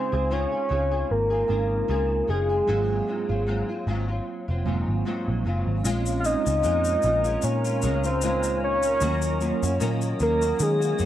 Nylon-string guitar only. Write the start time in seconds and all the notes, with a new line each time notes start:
Already playing: C#3 C4 F4 G#4
0.12 C4 F4 G#4
0.31 C#3 C4 F4 G#4
0.51 C4 F4 G#4
0.69 C#3 C4 F4 G#4
0.91 C4 F4 G#4
1.30 C4 F4 G#4
1.48 C#3 C4 F4 G#4
1.88 C#3 C4 F4 G#4
2.27 C#3 C4 F4 G#4
2.49 C4 F4 G#4
2.67 G#2 F#3 C4 F4
3.07 G#2 F#3 C4 F4
3.29 F#3 C4 F4
3.47 G#2 F#3 C4 F4
3.69 F#3 C4 F4
3.87 G#2 F#3 C4 F4
4.08 F#3 C4 F4
4.48 F#3 C4 F4
4.66 G#2 F#3 C4 F4
5.05 G#2 F#3 C4 F4
5.45 G#2 F#3 C4 F4
5.84 A#2 G#3 C#4 F4
6.24 A#2 G#3 C#4 F4
6.45 G#3 C#4 F4
6.62 A#2 G#3 C#4 F4
7.03 A#2 G#3 C#4 F4
7.24 G#3 C#4 F4
7.65 G#3 C#4 F4
7.82 A#2 G#3 C#4 F4
8.04 G#3 C#4 F4
8.22 A#2 G#3 C#4 F4
9.02 D#3 A#3 C#4 F#4
9.40 D#3 A#3 C#4 F#4
9.63 A#3 C#4 F#4
9.80 D#3 A#3 C#4 F#4
10.20 D#3 A#3 C#4 F#4
10.41 A#3 C#4 F#4
10.80 A#3 C#4 F#4
10.98 D#3 A#3 C#4 F#4